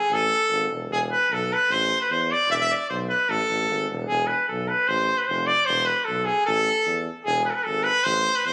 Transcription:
Already playing: G#4
0.10 A1 A4
0.50 G#1
0.70 E1
0.90 E1 G#4
1.12 B4
1.30 B1 A4
1.53 B4
1.70 A1 C5
2.02 B4
2.11 E2 C5
2.31 D5
2.49 E1 D5 E5
2.61 E5
2.70 D5
2.90 B1 C5
3.09 B4
3.29 A1 A4
3.50 A1
3.70 G#1
3.89 E1
4.07 E1 G#4
4.27 B4
4.48 B1 A4
4.68 B4
4.88 A1 C5
5.18 B4
5.27 F1 C5
5.46 D5
5.65 E1 C5
5.86 B4
6.05 B1 A4
6.25 G#4
6.46 A1 A4
6.86 E2
7.25 E1 G#4
7.45 B4
7.50 A4 B4
7.63 G#1 A4
7.83 B4
8.04 A1 C5
8.36 B4
8.45 E2 C5

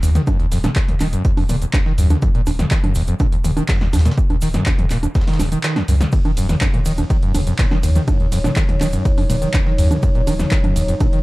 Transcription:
0.03 D#2, closed hi-hat, open hi-hat, cabasa
0.15 D#3, snare, closed hi-hat, mid tom, cabasa
0.27 F#2, kick, closed hi-hat, high conga, cabasa
0.40 D#2, closed hi-hat
0.52 D#1 F2, snare, closed hi-hat, open hi-hat, cabasa
0.64 A#2, snare, closed hi-hat, mid tom, high conga, cabasa
0.76 D#2, kick, snare, clap, closed hi-hat, cabasa
0.88 D#2, closed hi-hat, mid tom
1.00 D#1 D#3, snare, clap, closed hi-hat, open hi-hat, high conga, cabasa
1.13 F#2, closed hi-hat, cabasa
1.25 D#2, kick, closed hi-hat, cabasa
1.37 F2, open hi-hat, high conga
1.49 D#1 A#2, closed hi-hat, open hi-hat, mid tom, cabasa
1.62 D#2, closed hi-hat, cabasa
1.73 D#2, kick, snare, clap, closed hi-hat, high conga, cabasa
1.86 D#3, snare
1.98 D#2 F#2, closed hi-hat, open hi-hat, cabasa
2.10 D#2, snare, closed hi-hat, mid tom, high conga, cabasa
2.22 F2, kick, closed hi-hat, cabasa
2.35 A#2, closed hi-hat
2.46 D#1 D#2, closed hi-hat, open hi-hat, high conga, cabasa
2.59 D#2, snare, closed hi-hat, mid tom, cabasa
2.71 D#3, kick, snare, clap, closed hi-hat, cabasa
2.83 F#2, closed hi-hat, mid tom, high conga
2.95 D#1 D#2, closed hi-hat, open hi-hat, cabasa
3.07 F2, closed hi-hat, cabasa
3.19 A#2, kick, closed hi-hat, high conga, cabasa
3.32 D#2, closed hi-hat
3.44 D#1 D#2, closed hi-hat, open hi-hat, mid tom, cabasa
3.57 D#3, closed hi-hat, high conga, cabasa
3.68 F#2, kick, snare, clap, open hi-hat, cabasa
3.81 D#2, snare
3.93 D#2 F2, snare, closed hi-hat, open hi-hat, high conga, cabasa
3.99 snare, closed hi-hat
4.05 A#2, snare, closed hi-hat, mid tom, cabasa
4.11 snare, closed hi-hat
4.17 D#2, kick, closed hi-hat, cabasa
4.30 D#2, closed hi-hat, high conga
4.41 D#1 D#3, snare, closed hi-hat, open hi-hat, cabasa
4.54 F#2, snare, closed hi-hat, mid tom, cabasa
4.66 D#2, kick, snare, clap, closed hi-hat, high conga, cabasa
4.79 F2, closed hi-hat, mid tom
4.90 D#1 A#2, snare, clap, closed hi-hat, open hi-hat, cabasa
5.03 D#2, closed hi-hat, high conga, cabasa
5.15 D#2, kick, snare, closed hi-hat, cabasa
5.21 snare, closed hi-hat
5.27 D#3, snare, closed hi-hat, open hi-hat
5.33 snare, closed hi-hat
5.39 D#1, snare, closed hi-hat, open hi-hat, mid tom, high conga, cabasa
5.52 D#3, closed hi-hat, cabasa
5.63 D#3, snare, clap, closed hi-hat, cabasa
5.76 D#2, snare, closed hi-hat, high conga
5.88 C#2 F#2, closed hi-hat, open hi-hat, cabasa
6.01 D#2, snare, closed hi-hat, mid tom, cabasa
6.12 D#2 F#3 D#4 C#5, kick, closed hi-hat, ride, cabasa
6.25 D#3, closed hi-hat, high conga
6.37 D#1 F#2, closed hi-hat, open hi-hat, ride, cabasa
6.49 D#2, snare, closed hi-hat, mid tom, cabasa
6.61 F2, kick, snare, clap, closed hi-hat, ride, high conga, cabasa
6.74 A#2, closed hi-hat, mid tom
6.85 D#1 D#3, closed hi-hat, open hi-hat, ride, cabasa
6.98 D#2, closed hi-hat, high conga, cabasa
7.10 D#3, kick, closed hi-hat, ride, cabasa
7.23 F#2, closed hi-hat
7.34 D#1 D#2, closed hi-hat, open hi-hat, mid tom, ride, high conga, cabasa
7.47 F2, closed hi-hat, cabasa
7.59 A#2, kick, snare, clap, open hi-hat, ride, cabasa
7.71 D#3, snare, high conga
7.83 D#2, closed hi-hat, open hi-hat, ride, cabasa
7.95 D#3, snare, closed hi-hat, mid tom, cabasa
8.08 F#2, kick, closed hi-hat, ride, high conga, cabasa
8.20 D#2, closed hi-hat
8.32 D#1 F2, snare, closed hi-hat, open hi-hat, ride, cabasa
8.44 A#2, snare, closed hi-hat, mid tom, high conga, cabasa
8.56 D#3, kick, snare, clap, closed hi-hat, ride, cabasa
8.69 D#2, closed hi-hat, mid tom
8.81 D#1 D#3, snare, clap, closed hi-hat, open hi-hat, ride, high conga, cabasa
8.93 F#2, closed hi-hat, cabasa
9.05 D#2, kick, closed hi-hat, ride, cabasa
9.17 F2, open hi-hat, high conga
9.30 D#1 A#2, closed hi-hat, open hi-hat, mid tom, ride, cabasa
9.42 D#3, closed hi-hat, cabasa
9.53 D#2, kick, snare, clap, closed hi-hat, ride, high conga, cabasa
9.66 D#3, snare
9.78 D#2 F#2, closed hi-hat, open hi-hat, ride, cabasa
9.91 D#2, snare, closed hi-hat, mid tom, high conga, cabasa
10.03 F2, kick, closed hi-hat, ride, cabasa
10.15 A#2, closed hi-hat
10.27 D#1 D#3, closed hi-hat, open hi-hat, ride, high conga, cabasa
10.39 D#2, snare, closed hi-hat, mid tom, cabasa
10.51 D#3, kick, snare, clap, closed hi-hat, ride, cabasa
10.64 F#2, closed hi-hat, mid tom, high conga
10.76 D#1 D#2, closed hi-hat, open hi-hat, ride, cabasa
10.88 F2, closed hi-hat, cabasa
11.00 A#2, kick, closed hi-hat, ride, high conga, cabasa
11.13 D#3, closed hi-hat

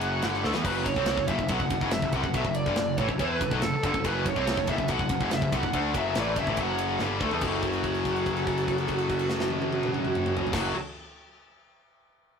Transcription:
Already playing: F#1 F#2 C#3 F#3 E4 A4 F#5
0.01 ride
0.22 G1 G2 D3 G3, snare, ride
0.34 snare
0.44 D2 D3 A3 A4, snare
0.54 E2 E3 B3, snare
0.64 F#1 F#2 C#3 F#3 F#4 A4 B4, kick, crash
0.85 F#1 F#2 C#3 C#5, kick, ride
0.96 C2 C3 G3 C4, kick
1.06 snare, ride
1.17 F#1 F#2 C#3, kick
1.28 F#1 F#2 C#3 E5, kick, ride
1.39 F#1 F#2 C#3, kick
1.48 B1 B2 F#3 F#5, kick, ride
1.59 F#1 F#2 C#3, kick
1.70 F#1 F#2 C#3, kick, ride
1.81 F#1 F#2 C#3, kick
1.91 F#1 F#2 C#3 E5, snare, ride
2.02 F#1 F#2 C#3, kick
2.12 C2 C3 G3 F#5, kick, ride
2.23 F#1 F#2 C#3, kick
2.34 B1 B2 F#3 E5, kick, ride
2.44 F#1 F#2 C#3, kick
2.54 D5, ride
2.66 G1 G2 D3, kick
2.76 F#1 F#2 C#3, snare, ride
2.98 A1 A2 E3 C#5, kick, ride
3.09 F#1 F#2 C#3, kick
3.19 E2 E3 B3 E4 B4, kick, ride
3.41 F#1 F#2 C#3, kick, ride
3.51 B1 B2 F#3, kick
3.61 F#1 F#2 C#3 A4, snare, ride
3.74 muted distorted electric guitar stroke, muted picked electric bass stroke
3.83 G1 G2 D3 A4, kick, ride
3.94 F#1 F#2 C#3, kick
4.04 F#1 F#2 C#3 F#3 B4, kick, ride
4.25 F#1 F#2 C#3 C#5, kick, ride
4.36 C2 C3 G3 C4, kick
4.47 snare, ride
4.57 F#1 F#2 C#3, kick
4.67 F#1 F#2 C#3 E5, kick, ride
4.78 F#1 F#2 C#3, kick
4.88 B1 B2 F#3 F#5, kick, ride
4.99 F#1 F#2 C#3, kick
5.09 F#1 F#2 C#3, kick, ride
5.21 F#1 F#2 C#3, kick
5.31 F#1 F#2 C#3 E5, snare, ride
5.41 F#1 F#2 C#3, kick
5.52 C2 C3 G3 F#5, kick, ride
5.63 F#1 F#2 C#3, kick
5.73 D2 D3 A3 D4, kick, ride
5.94 F#1 F#2 C#3 F#3 E5, kick, ride
6.15 A1 A2 E3 A3, snare, ride
6.19 D5
6.36 F#1 F#2 C#3 E5, kick, ride
6.47 A1 A2 E3, kick
6.57 F#1 F#2 C#3 F#3 F#5, kick, ride
6.78 ride
6.99 G1 G2 D3 G3, snare
7.21 D2 D3 A3, kick
7.26 A4
7.31 E2 E3 B3, floor tom
7.41 F#1 F#2 C#3 F#4, kick, crash
7.45 F#3 C#4 F#4 A4
7.62 kick, crash
7.73 crash
7.83 kick, crash
7.95 crash
8.05 kick, crash
8.16 crash
8.26 kick, crash
8.37 crash
8.47 kick, crash
8.58 crash
8.68 kick, crash
8.78 crash
8.88 kick, crash
8.98 crash
9.09 kick, crash
9.19 crash
9.30 snare
9.40 snare
9.50 high tom
9.62 high tom
9.73 high tom
9.83 mid tom
9.94 mid tom
10.05 mid tom
10.15 mid tom
10.26 mid tom
10.37 floor tom
10.47 floor tom
10.52 F#1 F#2 C#3 F#3 C#4 F#4 A4, kick, snare, crash
10.56 F#3

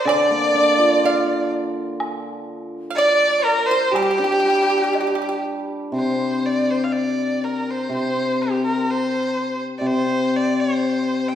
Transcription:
0.05 D3 D5, high woodblock
0.30 A#3
0.54 D4
0.78 F4
1.04 A#4 F5, low woodblock
2.00 high woodblock
2.90 F5
2.95 D5, low woodblock
3.44 A#4
3.66 C5
3.71 C5
3.91 G3 G4 G5, high woodblock
3.96 G4
4.02 G4
4.11 G4
4.18 D4 G4
4.24 G4
4.32 G4
4.40 G4
4.50 G4
4.55 G4
4.62 G4
4.70 G4
4.78 G4
4.84 G4
4.93 G4, low woodblock
5.01 G4
5.07 G4
5.15 G4
5.22 G4
5.29 G4
5.92 C3 C5
6.46 D5
6.71 C5
6.84 F5
6.93 D5
7.44 A#4
7.71 C5
7.89 C3
7.94 C5
8.42 G4
8.65 A#4
8.91 C5
9.78 C3 D5
9.87 C5
10.37 D5
10.60 C5
11.28 G5

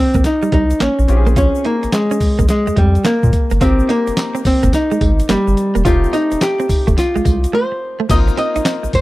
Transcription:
Already playing: C4 D#4 G4 A#4
0.00 C4
0.14 A#1 A#3, kick, closed hi-hat, shaker
0.24 D#4, muted clean electric guitar stroke, snare, closed hi-hat, shaker
0.42 G3, shaker
0.52 C2 G3 D#4, kick, closed hi-hat
0.70 closed hi-hat, shaker
0.80 A#1 A#3 C#4, snare, clap, closed hi-hat, shaker
0.99 A#1, muted clean electric guitar stroke, shaker
1.08 A#1 C4 C#4 F4 G4, closed hi-hat, shaker
1.17 G#4
1.26 A#3, closed hi-hat, shaker
1.36 C#4 F4, kick, closed hi-hat, shaker
1.55 shaker
1.65 A#3 D#4, closed hi-hat
1.83 A#1, muted clean electric guitar stroke, closed hi-hat, shaker
1.92 G#3, snare, clap, closed hi-hat, shaker
2.11 C#4, shaker
2.20 A#1, muted clean electric guitar stroke, kick, open hi-hat, shaker
2.39 A#1 A#3, kick, closed hi-hat, shaker
2.49 G#3, muted clean electric guitar stroke, snare, closed hi-hat, shaker
2.67 F2 G#3, shaker
2.76 F2 G3 G#3, kick, closed hi-hat
2.95 closed hi-hat, shaker
3.05 A#3, snare, clap, closed hi-hat, shaker
3.23 A#2, muted clean electric guitar stroke, kick, shaker
3.33 kick, closed hi-hat, shaker
3.50 G1 A#3, closed hi-hat, shaker
3.61 G#1 A#3 C4 D#4 F4 G4, kick, closed hi-hat, tambourine, shaker
3.79 shaker
3.89 A#3 D#4, closed hi-hat, tambourine
4.07 G1, muted clean electric guitar stroke, closed hi-hat, shaker
4.17 snare, clap, closed hi-hat, tambourine, shaker
4.35 C4, shaker
4.45 G1 C4, muted clean electric guitar stroke, kick, open hi-hat, tambourine, shaker
4.63 G1 A#3, kick, closed hi-hat, shaker
4.73 D#4, muted clean electric guitar stroke, snare, closed hi-hat, tambourine, shaker
4.91 G#3, shaker
5.01 G#1 G#3, kick, closed hi-hat, tambourine
5.19 closed hi-hat, shaker
5.29 G1 G3 A#3, snare, clap, closed hi-hat, tambourine, shaker
5.47 G1, muted clean electric guitar stroke, shaker
5.57 closed hi-hat, shaker
5.75 E1 A#3, closed hi-hat, shaker
5.85 F1 A3 C4 D#4 F4 G4, kick, closed hi-hat, tambourine, shaker
6.04 shaker
6.13 D#4, closed hi-hat, tambourine, shaker
6.31 F1, muted clean electric guitar stroke, closed hi-hat, shaker
6.41 G4, snare, clap, closed hi-hat, tambourine, shaker
6.60 C4, shaker
6.69 F1, muted clean electric guitar stroke, kick, open hi-hat, tambourine, shaker
6.87 F1 A3, kick, closed hi-hat, shaker
6.97 F4, muted clean electric guitar stroke, snare, closed hi-hat, tambourine, shaker
7.16 C2 G#3, shaker
7.25 C2 G#3, kick, closed hi-hat, tambourine, shaker
7.44 closed hi-hat, shaker
7.53 A3 C5
7.72 muted clean electric guitar stroke
8.00 A3
8.09 G#1 A#3 C4 D#4 F4 D#5, kick, closed hi-hat, crash, tambourine, shaker
8.28 muted clean electric guitar stroke, shaker
8.37 C4 D#5, closed hi-hat, tambourine
8.56 A#1 D#4, closed hi-hat, shaker
8.65 C4, snare, clap, closed hi-hat, tambourine, shaker
8.83 A#1, muted clean electric guitar stroke, shaker
8.93 A#1 C5, kick, closed hi-hat, tambourine

